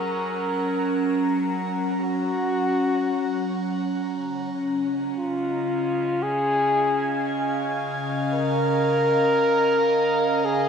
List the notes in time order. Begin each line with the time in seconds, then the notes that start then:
Already playing: F#3 C#4 A#4 F#5 A#5
2.00 F#4
4.14 C#3
4.84 D#5
5.02 F5
5.18 F4
6.22 G#4
8.34 A#4
10.45 G#4